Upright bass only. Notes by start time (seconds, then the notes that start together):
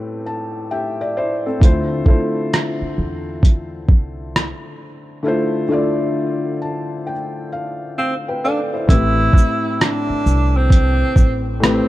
1.62 D2
2.81 muted upright bass stroke
2.98 E2
3.89 C2
8.89 A1
10.09 muted upright bass stroke
10.26 C2
11.16 A1